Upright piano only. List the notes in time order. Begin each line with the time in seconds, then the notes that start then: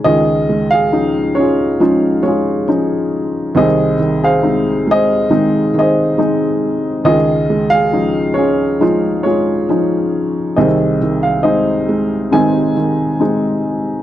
0.04 C#2 G#4 D#5
0.71 G#4 F5
0.92 F3 C#4 D#4
1.35 C#5
1.40 F4 G#4
1.80 F3 C#4 D#4
2.23 C#5
2.27 F4 G#4
2.67 F3 C#4 D#4
3.56 C2 G#4 C5 D#5
4.23 G#4 C5 F5
4.43 G#3 C4 D#4
4.91 G#4 C5 D#5
5.30 G#3 C4 D#4
5.78 G#4 C5 D#5
6.18 G#3 C4 D#4
7.04 C#2 G#4 D#5
7.70 G#4 F5
7.92 F3 C#4 D#4
8.34 F4 C#5
8.38 G#4
8.80 F3 C#4 D#4
9.23 F4 G#4 C#5
9.69 F3 C#4 D#4
10.56 C2 G#4 C5 D#5
11.23 F5
11.43 G#3 C4 D#4 G#4 C5 D#5
12.31 G#3 C4 D#4 C5 D#5 G#5
13.20 G#3 C4 D#4